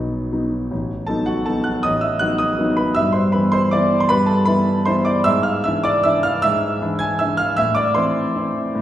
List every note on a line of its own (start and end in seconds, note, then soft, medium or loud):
0.00 0.73 B1 medium
0.00 0.28 F#3 soft
0.00 0.28 B3 soft
0.00 0.29 D#4 soft
0.00 0.47 B4 medium
0.00 0.50 B5 medium
0.32 0.67 F#3 soft
0.32 0.67 B3 soft
0.32 0.67 D#4 soft
0.71 1.07 A1 medium
1.07 1.44 F#3 soft
1.07 1.44 B3 soft
1.07 1.44 D#4 soft
1.07 1.26 A4 medium
1.07 1.27 A5 medium
1.26 1.45 F#4 medium
1.26 1.47 F#5 medium
1.46 1.81 F#3 soft
1.46 1.81 B3 soft
1.46 1.82 D#4 soft
1.46 1.65 A4 medium
1.46 1.66 A5 medium
1.64 1.83 F#5 medium
1.64 1.83 F#6 medium
1.83 2.21 A1 medium
1.83 2.02 D#5 medium
1.83 2.02 D#6 loud
2.01 2.20 E5 medium
2.01 2.21 E6 medium
2.19 2.55 F#3 soft
2.19 2.56 B3 soft
2.19 2.56 D#4 soft
2.19 2.39 F#5 medium
2.19 2.39 F#6 loud
2.38 2.76 D#5 medium
2.38 2.77 D#6 medium
2.59 2.93 F#3 soft
2.59 2.93 B3 soft
2.59 2.93 D#4 medium
2.77 2.95 B4 medium
2.77 2.96 B5 medium
2.95 3.33 G2 medium
2.95 3.14 E5 medium
2.95 3.14 E6 loud
3.12 3.32 C5 medium
3.12 3.33 C6 medium
3.32 3.69 E3 soft
3.32 3.69 B3 soft
3.32 3.69 E4 soft
3.32 3.52 B4 medium
3.32 3.53 B5 medium
3.52 3.71 C5 medium
3.52 3.72 C6 medium
3.71 4.07 E3 soft
3.71 4.07 B3 soft
3.71 4.07 E4 soft
3.71 3.99 D5 medium
3.71 4.00 D6 medium
4.00 4.10 C6 medium
4.09 4.46 G2 medium
4.09 4.27 B4 medium
4.09 4.28 B5 loud
4.26 4.46 A4 medium
4.26 4.46 A5 medium
4.45 4.84 E3 soft
4.45 4.84 B3 soft
4.45 4.84 E4 medium
4.45 4.84 B4 medium
4.45 4.87 B5 loud
4.86 5.22 E3 soft
4.86 5.22 B3 soft
4.86 5.23 E4 soft
4.86 5.05 C5 medium
4.86 5.06 C6 medium
5.05 5.24 D5 medium
5.05 5.25 D6 medium
5.24 5.64 G#2 medium
5.24 5.43 E5 medium
5.24 5.44 E6 loud
5.43 5.63 F5 medium
5.43 5.64 F6 medium
5.64 6.02 E3 soft
5.64 6.02 D4 soft
5.64 6.02 E4 soft
5.64 5.84 E5 medium
5.64 5.85 E6 medium
5.83 6.04 D5 medium
5.83 6.04 D6 loud
6.03 6.40 E3 soft
6.03 6.40 D4 soft
6.03 6.41 E4 medium
6.03 6.23 E5 medium
6.03 6.24 E6 loud
6.23 6.42 F5 medium
6.23 6.43 F6 loud
6.42 6.80 G#2 medium
6.42 6.96 E5 medium
6.42 7.00 E6 loud
6.81 7.16 E3 soft
6.81 7.16 D4 medium
6.81 7.17 E4 medium
6.99 7.18 G#5 medium
6.99 7.19 G#6 loud
7.19 7.54 E3 soft
7.19 7.54 D4 soft
7.19 7.54 E4 soft
7.19 7.38 E5 medium
7.19 7.38 E6 medium
7.37 7.56 F5 medium
7.37 7.57 F6 medium
7.57 7.95 A2 medium
7.57 7.75 E5 medium
7.57 7.76 E6 loud
7.75 7.94 D5 medium
7.75 7.95 D6 medium
7.95 8.32 E3 soft
7.95 8.33 C4 soft
7.95 8.33 E4 medium
7.95 8.82 C5 medium
7.95 8.82 C6 medium
8.36 8.71 E3 soft
8.36 8.71 C4 soft
8.36 8.72 E4 soft
8.75 8.82 A2 medium